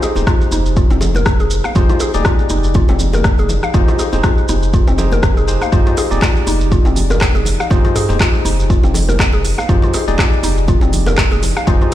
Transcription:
Already playing: D#4 G4 G#4 C5
0.02 G#4, high bongo, shaker
0.15 D#1 D#4 G4 G#4 C5, low bongo, muted conga, high conga, shaker
0.27 F4, kick, cross-stick, shaker
0.41 shaker
0.51 F1 D#4, muted conga, high conga, shaker
0.66 shaker
0.77 F4, kick, shaker
0.90 F1 C4, low bongo, muted conga, shaker
1.01 high bongo, low conga, shaker
1.15 A#4, low bongo, high conga, shaker
1.26 F1, kick, cross-stick, shaker
1.40 G#4, muted conga, shaker
1.51 shaker
1.64 F5, cross-stick, high conga, shaker
1.75 F1 D#4 F4 G4 G#4 C5, kick, muted conga, low conga, shaker
1.89 F4, low bongo, shaker
2.00 G#4, high bongo, shaker
2.14 D#1 D#4 G4 G#4 D5, muted conga, high conga, shaker
2.25 F4, kick, cross-stick, shaker
2.39 shaker
2.49 F1 D#4, muted conga, high conga, shaker
2.64 shaker
2.74 F4, kick, low conga, shaker
2.88 F1 C4, low bongo, muted conga, shaker
2.99 high conga, low conga, shaker
3.13 A#4, high bongo, high conga, shaker
3.24 F1, kick, cross-stick, shaker
3.38 G#4, muted conga, high conga, shaker
3.49 low bongo, low conga, shaker
3.63 F5, cross-stick, shaker
3.74 F1 D#4 F4 G4 G#4 C5, kick, muted conga, low conga, shaker
3.88 F4, low bongo, shaker
3.99 G#4, high bongo, shaker
4.13 D#1 D#4 G4 G#4 C5, low bongo, muted conga, high conga, shaker
4.24 F4, kick, cross-stick, shaker
4.38 shaker
4.49 F1 D#4, muted conga, high conga, shaker
4.63 shaker
4.73 F4, kick, shaker
4.87 F1 C4, low bongo, muted conga, shaker
4.98 D#4 G4 G#4 C5, high bongo, low conga, shaker
5.12 A#4, low bongo, high conga, shaker
5.23 F1, kick, cross-stick, shaker
5.37 G#4, muted conga, shaker
5.48 D#4 G4 G#4 C5, shaker
5.61 F5, cross-stick, high conga, shaker
5.72 F1 D#4 F4 G4 G#4 C5, kick, mid tom, muted conga, low conga, shaker
5.87 F4, low bongo, shaker
5.97 G#4, open hi-hat, high bongo, shaker
6.11 D#1 D#4 G4 G#4 D5, muted conga, high conga, shaker
6.22 F4, kick, cross-stick, clap, shaker
6.36 shaker
6.46 F1 D#4, open hi-hat, muted conga, high conga, shaker
6.61 shaker
6.72 F4, kick, low conga, shaker
6.85 F1 C4, low bongo, muted conga, shaker
6.96 open hi-hat, high conga, low conga, shaker
7.10 A#4, high bongo, high conga, shaker
7.21 F1, kick, cross-stick, clap, shaker
7.35 G#4, muted conga, high conga, shaker
7.45 open hi-hat, low bongo, low conga, shaker
7.60 F5, cross-stick, shaker
7.70 F1 D#4 F4 G4 G#4 C5, kick, mid tom, muted conga, low conga, shaker
7.85 F4, low bongo, shaker
7.96 G#4, mid tom, open hi-hat, high bongo, shaker
8.09 D#1 D#4 G4 G#4 C5, low bongo, muted conga, high conga, shaker
8.20 F4, kick, cross-stick, clap, shaker
8.35 shaker
8.45 F1 D#4, open hi-hat, muted conga, high conga, shaker
8.59 shaker
8.70 F4, kick, shaker
8.83 F1 C4, low bongo, muted conga, shaker
8.94 open hi-hat, high bongo, low conga, shaker
9.09 A#4, low bongo, high conga, shaker
9.20 F1, kick, cross-stick, clap, shaker
9.32 G#4, muted conga, shaker
9.45 open hi-hat, shaker
9.58 F5, cross-stick, high conga, shaker
9.69 F1 D#4 F4 G4 G#4 C5, kick, mid tom, muted conga, low conga, shaker
9.82 F4, low bongo, shaker
9.94 G#4, open hi-hat, high bongo, shaker
10.08 D#1 D#4 G4 G#4 D5, muted conga, high conga, shaker
10.19 F4, kick, cross-stick, clap, shaker
10.33 shaker
10.43 F1 D#4, open hi-hat, muted conga, high conga, shaker
10.57 shaker
10.68 F4, kick, low conga, shaker
10.81 F1 C4, low bongo, muted conga, shaker
10.93 open hi-hat, high conga, low conga, shaker
11.06 A#4, high bongo, high conga, shaker
11.18 F1, kick, cross-stick, clap, shaker
11.32 G#4, muted conga, high conga, shaker
11.42 open hi-hat, low bongo, low conga, shaker
11.57 F5, cross-stick, shaker
11.67 F1 D#4 F4 G4 G#4 C5, kick, mid tom, muted conga, low conga, shaker
11.81 F4, low bongo, shaker

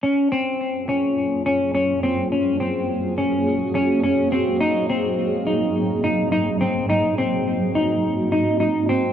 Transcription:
0.03 F#2 F#3 A#3 C#4 F4 G#4
0.32 C4
0.89 C#4
1.46 C#4
1.75 C#4
2.03 C4
2.32 C#4 F#4
2.60 C4
3.18 C#4
3.75 C#4
4.04 C#4
4.32 C4
4.61 G#2 C4 D#4
4.90 C4
5.47 D#4
6.04 D#4
6.32 D#4
6.61 C4
6.89 D#4 F#4
7.18 C4
7.75 D#4
8.32 D#4
8.60 D#4
8.89 C4

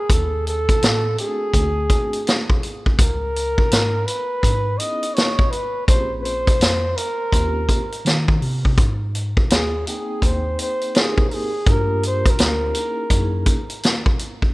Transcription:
Already playing: G#4
0.10 D#2 A4, kick, closed hi-hat
0.47 A4, closed hi-hat
0.69 kick, closed hi-hat
0.82 A2, snare, closed hi-hat
1.17 A3 C4 D4 F#4 G#4, closed hi-hat
1.54 D2, kick, closed hi-hat
1.90 A3 C4 D4 F#4 G#4, kick, closed hi-hat
2.13 closed hi-hat
2.27 snare, closed hi-hat
2.50 kick
2.63 closed hi-hat
2.86 kick
2.99 C#2 A#4, kick, closed hi-hat
3.36 closed hi-hat
3.58 kick
3.71 G#2, snare, closed hi-hat
4.06 B4, closed hi-hat
4.43 G#2, kick, closed hi-hat
4.78 B3 C#4 D#4 E4 G#4 D#5, closed hi-hat
5.03 closed hi-hat
5.14 C#5, snare, closed hi-hat
5.39 kick
5.51 B4, closed hi-hat
5.87 A#1 A#3 C4 C#4 F4 G4 C5, kick, closed hi-hat
5.95 G#4
6.20 B4 C5
6.25 closed hi-hat
6.47 kick, closed hi-hat
6.60 F2, snare, closed hi-hat
6.96 A#4, closed hi-hat
7.32 D#2 A#3 C4 C#4 F4 G4, kick, closed hi-hat
7.69 kick, closed hi-hat
7.92 closed hi-hat
8.05 D#3, snare, closed hi-hat
8.28 kick
8.42 C3, open hi-hat
8.65 kick
8.78 G#2, kick, closed hi-hat
9.15 closed hi-hat
9.37 kick
9.50 D#2 G#4, snare, closed hi-hat
9.86 A#3 C4 D#4 G#4 G5, closed hi-hat
10.22 D#2 C5, kick, closed hi-hat
10.59 C5, closed hi-hat
10.81 closed hi-hat
10.94 A#3 C4 D#4 G4 G#4 A#4, snare, closed hi-hat
11.18 kick
11.29 A#4, open hi-hat
11.34 G#4
11.66 G2 A3 D4 F4 G4 A#4, kick, closed hi-hat
11.70 A#3 A#4
12.03 C5, closed hi-hat
12.26 kick, closed hi-hat
12.30 A#4
12.39 D2, snare, closed hi-hat
12.74 A#3 C#4 D#4 E4 G#4, closed hi-hat
13.10 F#2 A#3 C#4 D#4 E4 G#4, kick, closed hi-hat
13.46 kick, closed hi-hat
13.70 closed hi-hat
13.83 snare, closed hi-hat
14.06 kick
14.19 closed hi-hat
14.42 kick

